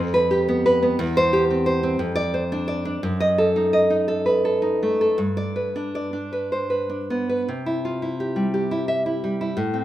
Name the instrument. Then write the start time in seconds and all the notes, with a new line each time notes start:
nylon-string guitar
Already playing: F2
0.14 B4
0.31 G4
0.48 B3
0.66 B4
0.83 B3
0.99 E2
1.17 C5
1.33 G4
1.51 C4
1.66 C5
1.83 C4
1.99 F2
2.16 D5
2.34 C5
2.52 D4
2.68 D5
2.85 D4
3.03 F#2
3.20 D#5
3.38 A4
3.56 D#4
3.73 D#5
3.90 D#4
4.08 A4
4.26 B4
4.45 A4
4.62 D#4
4.83 A3
5.01 A4
5.18 G2
5.37 D5
5.56 B4
5.76 D4
5.95 D5
6.13 D4
6.33 B4
6.52 C5
6.70 B4
6.90 D4
7.10 B3
7.29 B4
7.48 C3
7.66 E4
7.85 F4
8.02 E4
8.20 G4
8.36 G3
8.54 G4
8.71 E4
8.88 E5
9.06 E4
9.24 G3
9.41 E4
9.57 A2
9.74 C4